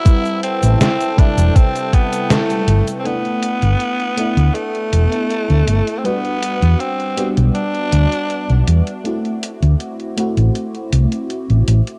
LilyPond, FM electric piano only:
\new Staff \with { instrumentName = "FM electric piano" } { \time 4/4 \key g \major \tempo 4 = 80 <g c' e' b'>4. <c g e' b'>2~ <c g e' b'>8 | <a b d' e'>4. <a b d' e'>2~ <a b d' e'>8 | <g d' fis' b'>4. <g b d' fis'>2~ <g b d' fis'>8 | <a c' e' fis'>4. <a c' e' fis'>2 r8 | }